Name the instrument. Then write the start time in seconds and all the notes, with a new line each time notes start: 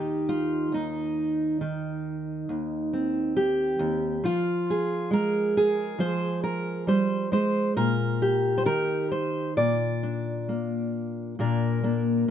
steel-string acoustic guitar
Already playing: D#2 D#3 D#4 G4
0.29 F4
0.72 D#2 D#4
1.61 D#3
2.49 D#2
2.93 C4
3.37 G4
3.79 D#2
4.24 F3 F4
4.70 G#4
5.11 G#3 A#4
5.57 G#4
5.99 F3 C5
6.44 A#4
6.87 G3 C5
7.32 G#3 C5
7.76 A#2 A#4
8.22 G4
8.58 C5
8.65 D#3 A#4
9.12 C5
9.57 A#2 D5
10.03 D4
10.49 A#3
11.39 A#2 A#3 D4 A#4
11.83 A#3 D4